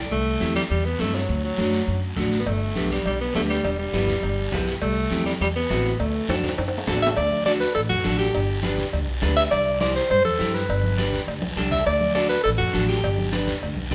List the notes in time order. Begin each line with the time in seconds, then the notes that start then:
Already playing: D5
0.11 C2 A3, long guiro
0.40 E2 C4 E4 G4, high conga, short guiro
0.55 G3, high conga, short guiro
0.70 E2 G3, long guiro
0.85 B3
0.99 G2 A3 C4 E4 A4, high conga, short guiro
1.14 F#3, short guiro
1.29 D2, long guiro
1.44 F#3
1.58 F#2 A3 D4 F#4, high conga, short guiro
1.73 short guiro
1.88 F#2, long guiro
2.16 A1 A3 D4 F#4, high conga, low conga, short guiro
2.32 short guiro
2.39 B3
2.46 G1 A3, cowbell, long guiro
2.75 B1 B3 D4 G4, high conga, short guiro
2.91 G3, high conga, short guiro
3.05 B1 G3, cowbell, long guiro
3.21 B3
3.34 D2 A3 B3 D4 G4, high conga, low timbale, short guiro
3.50 G3, short guiro
3.64 E1, cowbell, long guiro
3.79 G3
3.93 G1 B3 E4 G4, high conga, short guiro
4.08 high conga, low conga, short guiro
4.23 G1, cowbell, long guiro
4.52 B1 B3 E4 G4, high conga, low conga, low timbale, short guiro
4.67 short guiro
4.82 C2 A3, cowbell, long guiro
5.11 E2 C4 E4 G4, high conga, short guiro
5.26 G3, high conga, short guiro
5.40 E2 G3, cowbell, long guiro
5.56 B3
5.70 A1 C4 E4 F#4, high conga, low timbale, short guiro
5.85 short guiro
6.00 D2 A3, cowbell, long guiro
6.29 F#2 D4 F#4 A4, high conga, high timbale, short guiro
6.43 high conga, low conga, short guiro
6.49 high timbale
6.58 F#2, cowbell, high timbale, long guiro
6.68 high timbale
6.78 low timbale
6.87 A1 D4 F#4 A4, high conga, low conga, low timbale, short guiro
6.97 low timbale
7.02 E5, short guiro
7.07 low timbale
7.17 D2 D5, cowbell, high conga, long guiro
7.31 high conga
7.46 D4 F#4 A4 D5, high conga, short guiro
7.60 B4, short guiro
7.74 A1 A4, cowbell, high conga, long guiro
7.89 F#2 F#4, high conga
8.04 A1 D4 F#4 A4, high conga, short guiro
8.19 G4, short guiro
8.34 G1, cowbell, high conga, long guiro
8.63 D4 G4 B4, high conga, short guiro
8.78 low conga, short guiro
8.93 D2, cowbell, high conga, long guiro
9.08 B1
9.22 D2 D4 G4 B4, high conga, low conga, low timbale, short guiro
9.36 E5, short guiro
9.51 C2 D5, cowbell, high conga, long guiro
9.81 E4 G4 C5 D5, high conga, short guiro
9.96 C5, short guiro
10.10 G2 C5, cowbell, high conga, long guiro
10.25 E2 A4, high conga
10.39 G2 E4 G4 C5, high conga, short guiro
10.54 B4, short guiro
10.69 G1, cowbell, high conga, long guiro
10.84 high conga
10.98 D4 G4 B4, high conga, short guiro
11.13 low conga, short guiro
11.28 D2, cowbell, high conga, long guiro
11.42 B1, high conga
11.56 C2 D4 G4 A4, high conga, short guiro
11.71 E5, low conga, short guiro
11.86 D2 D5, cowbell, high conga, long guiro
12.01 high conga
12.15 D4 F#4 A4 D5, high conga, short guiro
12.29 B4, short guiro
12.43 A1 A4, cowbell, high conga, long guiro
12.58 F#2 F#4
12.73 A1 D4 F#4 A4, high conga, short guiro
12.88 G4, short guiro
13.03 G1, cowbell, long guiro
13.18 high conga
13.32 D4 G4 B4, high conga, short guiro
13.47 low conga, short guiro
13.62 D2, cowbell, high conga, long guiro
13.77 B1, high conga
13.91 D2 D4 G4, high conga, low conga